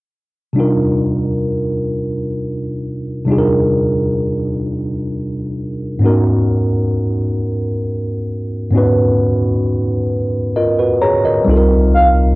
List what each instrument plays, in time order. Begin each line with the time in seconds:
0.53 tine electric piano C3 G3 D4
0.57 tine electric piano D#4 F4 A#4
3.25 tine electric piano C3 G3 D4 D#4
3.30 tine electric piano F4 G#4
3.38 tine electric piano A#4
5.99 tine electric piano G#2 A#3 C#4
6.03 tine electric piano B3 D#4 F#4 A#4
8.71 tine electric piano G#2 B3 C#4
8.75 tine electric piano D#4 F#4 B4
10.56 tine electric piano F4 A#4 D#5
10.79 tine electric piano F#4 B4
11.02 tine electric piano G#4 C#5 A#5
11.25 tine electric piano A#4 D#5
11.44 analog synth bass C2, tine electric piano G3 C4 D#4
11.49 tine electric piano F4 A4
11.57 tine electric piano A#4
11.94 soft synth lead F5